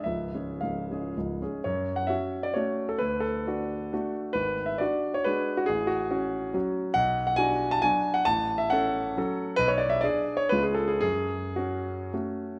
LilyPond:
\new Staff \with { instrumentName = "Grand piano" } { \time 3/4 \key fis \minor \tempo 4 = 132 << { e''4 eis''4. r8 | cis''8. fis''16 e''8. d''16 cis''8. a'16 | b'8 a'2 r8 | b'8. e''16 d''8. cis''16 b'8. fis'16 |
gis'8 fis'2 r8 | fis''8. fis''16 gis''8. a''16 gis''8. fis''16 | a''8. e''16 fis''2 | b'16 cis''16 d''16 e''16 d''8. cis''16 b'16 gis'16 a'16 gis'16 |
gis'4 fis'4. r8 | } \\ { <cis,, cis,>8 <gis cis' gis'>8 <cis,, cis,>8 <gis cis' gis'>8 <cis,, cis,>8 <gis cis' gis'>8 | fis,4 <cis' fis'>4 <a cis' fis'>4 | d,4 <d' fis'>4 <a d' fis'>4 | gis,,4 <d' fis'>4 <gis d' fis'>4 |
a,,4 <cis' fis'>4 <fis cis' fis'>4 | b,,4 <d' fis'>4 <fis d' fis'>4 | a,,4 <cis' a'>4 <fis cis' a'>4 | b,,4 <d' gis'>4 <cis, gis cis' eis'>4 |
fis,4 cis'4 <a cis' fis'>4 | } >> }